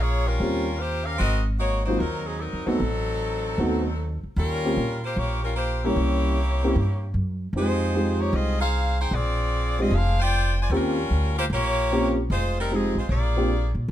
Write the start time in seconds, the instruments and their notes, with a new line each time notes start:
Already playing: upright bass A#1
0.00 saxophone section A#3 F4 G#4 C#5
0.25 saxophone section G3 C#4 F4 A#4
0.40 upright bass D#2, grand piano G3 A#3 C4 C#4 F4
0.79 saxophone section A#3 F4 G4 C5
1.04 saxophone section C#4 G4 A#4 F5
1.17 upright bass G#1, saxophone section C4 F#4 A#4 D#5
1.58 saxophone section A#3 D#4 F#4 C#5
1.84 grand piano F#3 A#3, saxophone section A#3 D#4 F#4 C5
1.88 grand piano C4 D#4 F4
1.98 upright bass D#2, saxophone section F#3 C4 D#4 A#4
2.24 saxophone section F#3 C4 D#4 G#4
2.38 saxophone section F#3 C4 D#4 A4 A#4
2.53 upright bass F2
2.65 upright bass E2, saxophone section F#3 C4 D#4 A4, grand piano A3 B3 C4 D#4 F#4
2.80 upright bass A1
3.58 upright bass D#2, grand piano A3 B3 C4 D#4 F#4
4.23 muted upright bass stroke
4.36 upright bass D#2, saxophone section G3 C#4 F4 A#4
4.64 grand piano A#3 C4 C#4 F4 G4
4.77 upright bass A#2
5.03 saxophone section A#3 F4 G4 C5
5.16 upright bass A#1, saxophone section A#3 F4 G4 C#5
5.43 saxophone section G3 C#4 F4 A#4
5.55 saxophone section A#3 F4 G4 C5
5.82 grand piano G3 A#3 C#4 E4 A#4, saxophone section A#3 E4 G4 C#5
5.96 upright bass C2
6.63 grand piano A#3 C4 C#4 E4 G4
6.76 upright bass G2
7.14 upright bass F#2
7.53 upright bass F2, grand piano G#3 C4 D#4 F4 G4, saxophone section G#3
7.57 saxophone section D#4 F4 C5
7.95 grand piano G#3 C4 D#4 F4 G4
8.19 saxophone section A#3 D#4 G4 C#5
8.33 upright bass C2, saxophone section C4 F4 G#4 D#5
8.59 saxophone section D#4 G#4 C5 F5
8.99 saxophone section D#4 G#4 C5 G5
9.11 upright bass A#1, saxophone section C4 F4 G#4 D5
9.79 grand piano G#3 C4 D4 F4 G4, saxophone section C4 F4 G#4 D#5
9.91 upright bass F1, saxophone section D4 G#4 C5 F5
10.20 saxophone section F4 C5 D5 G5
10.61 saxophone section F4 C5 D5 G#5
10.70 upright bass D#2, grand piano A#3 C4 C#4 F4 G4, saxophone section C#4 F4 A4
10.74 saxophone section G3 A#4
11.10 upright bass D2
11.38 saxophone section A#3 F4 G4 C5
11.50 upright bass A#1, saxophone section A#3 F4 G4 C#5
11.91 grand piano A#3 C4 C#4 F4 G4
12.30 upright bass F1, saxophone section G#3 D#4 F4 C5
12.58 saxophone section G3 C4 D#4 A#4
12.71 saxophone section F3 C4 D#4 G#4, grand piano G#3 C4 D#4 F4 G4
12.95 upright bass A1, saxophone section G#3 D#4 F4 C5
13.09 upright bass A#1, saxophone section A#3 F4 G#4 D5
13.36 grand piano A#3 C4 D4 F4 G4
13.75 upright bass A#2
13.88 upright bass D#2